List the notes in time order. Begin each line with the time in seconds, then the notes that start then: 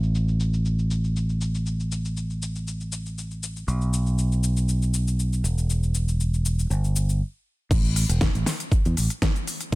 Already playing: A1
0.03 shaker
0.15 shaker
0.28 shaker
0.40 shaker
0.54 shaker
0.65 shaker
0.79 shaker
0.91 shaker
1.04 shaker
1.16 shaker
1.29 shaker
1.41 shaker
1.55 shaker
1.66 shaker
1.80 shaker
1.92 shaker
2.05 shaker
2.17 shaker
2.30 shaker
2.42 shaker
2.56 shaker
2.67 shaker
2.81 shaker
2.92 shaker
3.06 shaker
3.18 shaker
3.31 shaker
3.43 shaker
3.56 shaker
3.68 B1, shaker
3.81 shaker
3.93 shaker
4.07 shaker
4.18 shaker
4.32 shaker
4.43 shaker
4.57 shaker
4.69 shaker
4.82 shaker
4.94 shaker
5.08 shaker
5.19 shaker
5.33 shaker
5.44 E1, shaker
5.58 shaker
5.70 shaker
5.83 shaker
5.95 shaker
6.08 shaker
6.20 shaker
6.34 shaker
6.45 shaker
6.59 shaker
6.70 G1, shaker
6.84 shaker
6.96 shaker
7.09 shaker
7.71 A1, kick, closed hi-hat, crash, shaker
7.85 shaker
7.96 open hi-hat, shaker
8.09 E1, closed hi-hat, shaker
8.21 kick, snare, closed hi-hat, shaker
8.35 A1, closed hi-hat, shaker
8.46 snare, open hi-hat, shaker
8.60 closed hi-hat, shaker
8.72 muted fingered electric bass stroke, kick, closed hi-hat, shaker
8.85 E2, closed hi-hat, shaker
8.97 A1, open hi-hat, shaker
9.10 closed hi-hat, shaker
9.22 kick, snare, closed hi-hat, shaker
9.36 closed hi-hat, shaker
9.47 open hi-hat, shaker
9.61 closed hi-hat, shaker